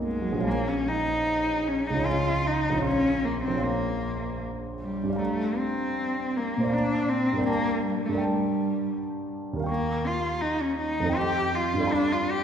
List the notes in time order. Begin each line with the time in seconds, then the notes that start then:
Already playing: B1 F#2 F#3 A#3 D#4
0.05 G#3
0.22 F#3
0.32 A#1 F4
0.38 C#5 F5
0.45 A#3 G#5
0.68 C#4
0.88 D#4
1.68 C#4
1.87 C#2 D#4
1.94 F4 C#5
2.00 D#5 G#5
2.06 F4
2.47 D#4
2.70 A#1 F4
2.76 C#5 F5
2.82 C#4 C6
3.25 A#3
3.43 C4
3.48 A#1 F4
3.55 C#5 F5
3.61 A#3 C6
4.80 G3
5.03 G2 G4
5.10 D5 F5
5.16 A3 A#5
5.59 C4
6.37 A#3
6.57 A#2 C5
6.64 D5 F5
6.71 D4 A#5
7.09 C4
7.33 G2 A#4
7.39 D5
7.43 G5 A5
7.48 A#3
7.86 G3
8.05 G2 A3
8.12 A#4 D5
8.18 G5
8.22 G3 A5
9.53 D#2 A#4
9.60 F5 G5
9.66 A#3 C#6
10.06 F4
10.41 D#4
10.62 C#4
10.80 D#4
11.00 F2 A4
11.06 D#5 G5
11.13 C6
11.18 G4
11.54 F4
11.74 G2 A4
11.80 D5 F5
11.87 B5
11.93 D4
12.12 F4
12.31 G4